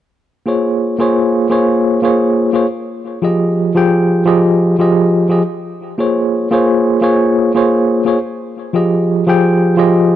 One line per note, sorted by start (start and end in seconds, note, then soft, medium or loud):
0.46 0.95 A#3 medium
0.46 0.95 F4 medium
0.46 0.96 G#4 medium
0.46 0.96 C5 medium
0.46 0.96 C#5 medium
0.99 1.46 A#3 medium
0.99 1.47 F4 medium
0.99 1.47 G#4 medium
0.99 1.47 C5 medium
0.99 1.48 C#5 medium
1.49 1.99 A#3 medium
1.49 1.99 F4 medium
1.49 1.99 G#4 medium
1.49 2.00 C5 medium
1.49 2.00 C#5 medium
2.02 2.50 A#3 medium
2.02 2.50 F4 medium
2.02 2.50 G#4 medium
2.02 2.51 C5 medium
2.02 2.51 C#5 medium
2.53 2.65 A#3 medium
2.53 2.65 F4 medium
2.53 2.65 G#4 medium
2.53 2.66 C5 medium
2.53 2.66 C#5 medium
3.22 3.71 F3 medium
3.22 3.71 F4 medium
3.22 3.72 G4 medium
3.22 3.72 G#4 medium
3.22 3.72 D#5 medium
3.75 4.22 F3 medium
3.75 4.22 F4 medium
3.75 4.23 G4 medium
3.75 4.23 G#4 medium
3.75 4.23 G5 medium
4.25 4.74 F3 medium
4.25 4.75 F4 medium
4.25 4.75 G4 medium
4.25 4.75 G#4 medium
4.25 4.76 D#5 medium
4.78 5.26 F3 medium
4.78 5.26 F4 medium
4.78 5.26 G4 medium
4.78 5.27 G#4 medium
4.78 5.27 D#5 medium
5.29 5.41 F3 medium
5.29 5.41 F4 medium
5.29 5.41 G4 medium
5.29 5.42 G#4 medium
5.29 5.42 D#5 medium
5.98 6.47 A#3 medium
5.98 6.47 F4 medium
5.98 6.48 G#4 medium
5.98 6.48 C5 medium
5.98 6.48 C#5 medium
6.51 6.98 A#3 medium
6.51 6.98 F4 medium
6.51 6.99 G#4 medium
6.51 6.99 C5 medium
6.51 6.99 C#5 medium
7.01 7.50 A#3 medium
7.01 7.51 F4 medium
7.01 7.51 G#4 medium
7.01 7.51 C5 medium
7.01 7.52 C#5 medium
7.54 8.02 A#3 medium
7.54 8.02 F4 medium
7.54 8.02 G#4 medium
7.54 8.03 C5 medium
7.54 8.03 C#5 medium
8.05 8.17 A#3 medium
8.05 8.17 F4 medium
8.05 8.17 G#4 medium
8.05 8.18 C5 medium
8.05 8.18 C#5 medium
8.73 9.23 F3 medium
8.73 9.23 F4 medium
8.73 9.23 G4 medium
8.73 9.24 G#4 medium
8.73 9.24 D#5 medium
9.27 9.74 F3 medium
9.27 9.74 F4 medium
9.27 9.75 G4 medium
9.27 9.75 G#4 medium
9.27 9.75 G5 medium
9.77 10.16 F3 medium
9.77 10.16 F4 medium
9.77 10.16 G4 medium
9.77 10.16 G#4 medium
9.77 10.16 D#5 medium